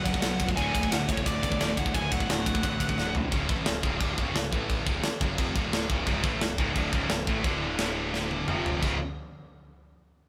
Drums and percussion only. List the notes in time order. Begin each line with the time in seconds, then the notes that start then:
0.06 kick, ride
0.14 kick
0.22 snare, ride
0.40 kick, ride
0.49 kick
0.57 kick, ride
0.75 kick, ride
0.83 kick
0.92 snare, ride
1.09 kick, ride
1.17 kick
1.26 kick, ride
1.43 kick, ride
1.52 kick
1.61 snare, ride
1.77 kick, ride
1.86 kick
1.95 kick, ride
2.12 kick, ride
2.20 kick
2.30 snare, ride
2.46 kick, ride
2.55 kick
2.63 kick, ride
2.80 kick, ride
2.89 kick
2.98 snare
3.15 floor tom
3.32 kick, china
3.49 kick
3.66 snare, china
3.83 kick
4.00 kick, china
4.18 kick
4.35 snare, china
4.53 kick
4.70 kick, china
4.87 kick
5.03 snare, china
5.21 kick
5.38 kick, china
5.56 kick
5.73 snare, china
5.90 kick
6.07 kick, china
6.24 kick
6.41 snare, china
6.58 kick
6.76 kick, china
6.93 kick
7.10 snare, china
7.27 kick
7.44 kick, china
7.79 snare, china
8.14 snare
8.31 high tom
8.48 mid tom
8.66 floor tom
8.83 kick, china